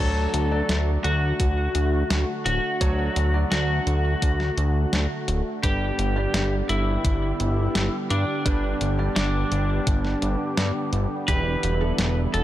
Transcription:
0.00 0.27 D2 loud
0.00 12.44 D3 medium
0.00 0.47 F#3 medium
0.00 5.59 A3 medium
0.00 0.47 D4 medium
0.00 5.59 F#4 medium
0.00 0.90 A4 loud
0.00 0.47 C#5 medium
0.34 0.62 D2 loud
0.34 closed hi-hat medium
0.51 2.77 F#3 medium
0.51 2.77 D4 medium
0.51 2.77 D5 medium
0.69 0.98 D2 loud
0.69 snare loud
0.69 closed hi-hat medium
1.04 1.33 D2 medium
1.04 2.31 F#4 medium
1.04 closed hi-hat medium
1.40 1.68 D2 loud
1.40 kick loud
1.40 closed hi-hat medium
1.75 2.04 D2 loud
1.75 closed hi-hat medium
2.10 2.25 D2 medium
2.10 snare loud
2.10 closed hi-hat medium
2.46 2.60 D1 medium
2.46 3.37 F#4 medium
2.46 closed hi-hat medium
2.81 3.10 D2 medium
2.81 3.30 F#3 medium
2.81 3.30 D4 medium
2.81 3.30 C#5 medium
2.81 kick loud
2.81 closed hi-hat loud
3.16 3.45 D2 medium
3.16 closed hi-hat medium
3.34 5.59 F#3 medium
3.34 5.59 D4 medium
3.34 5.59 D5 medium
3.52 3.80 D2 medium
3.52 5.49 F#4 medium
3.52 snare loud
3.52 closed hi-hat medium
3.87 4.15 D2 medium
3.87 closed hi-hat medium
4.22 4.51 D2 loud
4.22 kick loud
4.22 closed hi-hat medium
4.40 snare soft
4.57 4.86 D2 medium
4.57 closed hi-hat medium
4.93 5.07 D2 medium
4.93 snare loud
4.93 closed hi-hat medium
5.28 5.42 D1 loud
5.28 closed hi-hat medium
5.63 5.92 G1 medium
5.63 6.12 G2 medium
5.63 11.24 G3 medium
5.63 6.12 G3 medium
5.63 12.44 B3 medium
5.63 6.12 D4 medium
5.63 11.24 G4 medium
5.63 6.55 G4 medium
5.63 6.12 B4 medium
5.63 kick loud
5.63 closed hi-hat loud
5.99 6.27 G1 loud
5.99 closed hi-hat medium
6.16 8.41 G2 medium
6.16 8.41 G3 medium
6.16 8.41 D4 medium
6.16 8.41 D5 medium
6.34 6.62 G1 loud
6.34 snare loud
6.34 closed hi-hat medium
6.69 6.98 G1 medium
6.69 7.96 E4 medium
6.69 closed hi-hat medium
7.04 7.33 G1 loud
7.04 kick loud
7.04 closed hi-hat medium
7.40 7.68 G1 medium
7.40 closed hi-hat medium
7.75 7.89 G1 medium
7.75 snare loud
7.75 closed hi-hat medium
8.10 8.25 G2 medium
8.10 9.02 D4 medium
8.10 closed hi-hat medium
8.45 8.74 G1 loud
8.45 8.94 G2 medium
8.45 8.94 G3 medium
8.45 8.94 D4 medium
8.45 8.94 B4 medium
8.45 kick loud
8.45 closed hi-hat medium
8.81 9.10 G1 medium
8.81 closed hi-hat medium
8.99 11.24 G2 medium
8.99 11.24 G3 medium
8.99 11.24 D4 medium
8.99 11.24 D5 medium
9.16 9.45 G1 loud
9.16 11.14 D4 medium
9.16 snare loud
9.16 closed hi-hat medium
9.52 9.80 G1 medium
9.52 closed hi-hat medium
9.87 10.15 G1 loud
9.87 kick loud
9.87 closed hi-hat medium
10.05 snare soft
10.22 10.36 G1 loud
10.22 closed hi-hat medium
10.57 10.72 G2 loud
10.57 snare loud
10.57 closed hi-hat medium
10.93 11.07 G1 loud
10.93 closed hi-hat medium
11.28 11.57 E1 medium
11.28 11.77 E3 medium
11.28 12.44 G3 medium
11.28 11.77 D4 medium
11.28 12.44 E4 medium
11.28 11.77 G4 medium
11.28 12.20 B4 loud
11.28 kick loud
11.28 closed hi-hat medium
11.63 11.92 E1 medium
11.63 closed hi-hat medium
11.81 12.44 E3 medium
11.81 12.44 D4 medium
11.81 12.44 A4 medium
11.98 12.27 E1 loud
11.98 snare loud
11.98 closed hi-hat medium
12.34 12.44 E1 medium
12.34 12.44 A4 medium
12.34 closed hi-hat medium

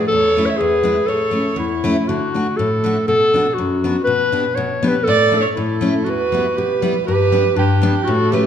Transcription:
0.00 0.11 B4 medium
0.08 0.47 A4 loud
0.12 0.49 E2 medium
0.12 0.50 C#5 loud
0.37 0.47 A3 medium
0.37 0.47 C#4 soft
0.37 0.48 E4 medium
0.46 0.59 C#5 medium
0.46 0.62 E5 medium
0.57 0.97 E2 medium
0.57 1.08 G#4 loud
0.57 1.09 B4 medium
0.83 0.95 G#3 medium
0.83 0.96 B3 medium
0.83 0.96 E4 medium
1.06 1.46 A2 soft
1.06 1.57 A4 loud
1.06 1.84 C#5 medium
1.31 1.44 A3 soft
1.31 1.44 C#4 soft
1.31 1.45 E4 soft
1.56 1.95 E2 medium
1.56 2.09 E4 medium
1.84 1.95 A3 medium
1.84 1.95 C#4 medium
1.84 1.96 E4 medium
2.08 2.47 D3 medium
2.08 2.58 F#4 loud
2.34 2.46 A3 soft
2.34 2.46 D4 soft
2.34 2.47 F#4 medium
2.57 2.97 A2 medium
2.57 3.07 A4 medium
2.84 2.95 A3 medium
2.84 2.96 D4 medium
2.84 2.96 F#4 medium
3.08 3.46 B2 medium
3.08 3.56 A4 loud
3.34 3.45 B3 soft
3.34 3.45 D4 medium
3.34 3.46 F#4 medium
3.54 4.03 F#4 medium
3.58 3.96 F#2 medium
3.84 3.95 B3 medium
3.84 3.96 D4 medium
3.84 3.96 F#4 medium
4.04 4.45 B2 medium
4.04 4.57 B4 loud
4.32 4.44 B3 soft
4.32 4.44 D4 medium
4.32 4.44 G4 medium
4.55 4.95 B2 medium
4.55 4.90 C#5 medium
4.83 4.94 B3 medium
4.83 4.94 D4 medium
4.83 4.95 G4 medium
4.88 5.05 B4 loud
5.04 5.45 A2 medium
5.04 5.36 A4 loud
5.04 5.41 D5 loud
5.32 5.43 A3 medium
5.32 5.44 D4 soft
5.32 5.45 E4 soft
5.37 5.45 A4 medium
5.41 5.49 C#5 medium
5.53 6.06 E4 medium
5.53 6.10 A4 medium
5.57 5.95 A2 medium
5.81 5.93 A3 medium
5.81 5.94 C#4 medium
5.81 5.94 E4 medium
6.04 6.45 E2 medium
6.04 6.59 F#4 loud
6.09 6.57 B4 loud
6.32 6.44 G3 medium
6.32 6.44 B3 soft
6.32 6.45 E4 medium
6.57 6.95 B2 medium
6.57 6.91 G4 medium
6.57 7.05 B4 medium
6.82 6.94 G3 medium
6.82 6.94 B3 medium
6.82 6.94 E4 medium
7.05 7.45 G2 medium
7.05 7.58 G4 loud
7.05 7.60 B4 loud
7.32 7.43 G3 medium
7.32 7.44 B3 soft
7.32 7.44 D4 medium
7.56 7.94 G2 medium
7.56 8.06 D4 medium
7.56 8.11 G4 medium
7.82 7.93 G3 medium
7.82 7.94 B3 medium
7.82 7.94 D4 medium
8.04 8.44 A2 medium
8.04 8.33 F#4 loud
8.09 8.35 A4 loud
8.31 8.43 E3 medium
8.31 8.44 A3 medium
8.31 8.44 C#4 medium
8.31 8.46 G4 medium
8.31 8.46 B4 medium

